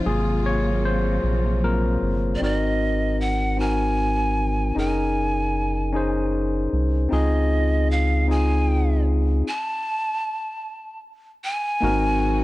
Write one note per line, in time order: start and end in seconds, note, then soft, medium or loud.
0.00 2.36 G#3 medium
0.00 2.36 F4 medium
0.04 1.19 G#1 loud
0.04 2.38 C3 medium
0.04 1.19 C3 medium
0.04 2.37 F#3 medium
0.04 1.19 F#3 medium
0.04 2.37 A#3 medium
0.04 1.19 A#3 medium
0.04 1.19 F4 medium
0.04 0.42 G#4 medium
0.46 0.85 C#5 loud
0.85 1.65 C5 loud
1.24 1.97 A#1 medium
1.62 1.97 F#3 medium
1.62 1.98 A#3 soft
1.62 1.98 C4 soft
1.62 1.98 F4 medium
1.62 2.37 A#4 medium
2.02 2.37 G1 loud
2.36 2.43 D5 medium
2.40 4.72 G#1 loud
2.40 3.21 C4 medium
2.40 3.22 D#4 medium
2.40 3.23 F#4 medium
2.40 2.55 D5 medium
2.44 3.23 A#4 medium
2.55 3.22 D#5 medium
3.21 3.62 F#5 medium
3.57 4.39 C4 medium
3.57 4.39 D#4 soft
3.57 4.40 F#4 medium
3.57 4.77 G#5 loud
3.61 4.41 A#4 medium
4.75 6.68 F#1 medium
4.75 5.56 C#4 medium
4.75 5.57 D#4 medium
4.75 5.58 G#4 medium
4.75 6.30 G#5 loud
4.79 5.59 A#4 medium
5.93 6.74 C#4 medium
5.93 6.75 D#4 medium
5.93 6.75 G#4 medium
5.93 6.76 C5 medium
6.73 7.08 C2 medium
7.09 9.43 C#2 medium
7.09 7.91 C4 medium
7.09 7.92 D#4 medium
7.09 7.93 F4 medium
7.13 7.93 G#4 medium
7.13 7.92 D#5 medium
7.91 8.29 F5 medium
8.27 9.09 C4 medium
8.27 9.10 D#4 medium
8.27 9.10 F4 medium
8.27 9.11 G#4 medium
8.27 9.04 G#5 loud
9.48 11.00 A5 loud
11.44 12.44 G#5 loud
11.81 12.44 G#1 loud
11.81 12.44 D#3 medium
11.81 12.44 F#3 medium
11.81 12.44 G#3 medium
11.81 11.87 A#3 medium
11.81 12.44 C4 medium
11.81 12.44 D#4 medium
11.81 12.44 F#4 loud
11.81 12.44 F#4 medium
11.81 12.44 A#4 medium
11.87 12.44 C4 medium